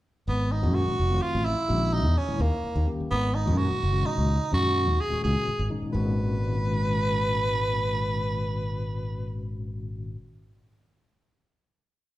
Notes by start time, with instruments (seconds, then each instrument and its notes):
0.28 fingered electric bass G#1, tenor saxophone B3
0.52 tenor saxophone D#4
0.62 fingered electric bass F#2, tine electric piano A#2 D#3 G#3 C#4 F#4
0.75 tenor saxophone F#4
0.88 muted fingered electric bass stroke
0.99 fingered electric bass F1
1.09 tine electric piano D#3 F#3 A3 C4 F4
1.22 tenor saxophone F4
1.35 fingered electric bass A1
1.45 tenor saxophone E4
1.68 fingered electric bass A#1, tine electric piano A#2 D#3 G#3 C#4 F#4
1.94 tenor saxophone D#4
2.06 fingered electric bass E2
2.17 tenor saxophone C#4
2.27 tine electric piano A#2 D#3 G#3 C#4 E4, muted fingered electric bass stroke
2.40 fingered electric bass D#2, tenor saxophone A#3
2.64 muted fingered electric bass stroke
2.76 fingered electric bass D#2
2.87 tine electric piano D#3 G3 A#3 C#4 G4
3.00 muted fingered electric bass stroke
3.11 fingered electric bass G#1, tenor saxophone B3
3.35 tenor saxophone D#4
3.46 fingered electric bass F#2, tine electric piano A#2 D#3 G#3 C#4 F#4
3.58 tenor saxophone F#4
3.71 muted fingered electric bass stroke
3.83 fingered electric bass F#1
3.92 tine electric piano A#2 D#3 G#3 C#4 F#4
4.06 tenor saxophone D#4
4.18 fingered electric bass C#2
4.51 fingered electric bass F#2, tine electric piano A#2 D#3 G#3 C#4 F#4, tenor saxophone F#4
4.88 fingered electric bass D#2
5.01 tenor saxophone G#4
5.10 tine electric piano A#2 D#3 G#3 C#4 F#4, muted fingered electric bass stroke
5.24 fingered electric bass C#2, tenor saxophone G#4
5.48 muted fingered electric bass stroke
5.59 fingered electric bass G#1
5.70 tine electric piano A#2 D#3 G#3 C#4 D#4
5.83 muted fingered electric bass stroke
5.92 fingered electric bass G#1, tine electric piano A#2 D#3 G#3 C#4 F#4, tenor saxophone B4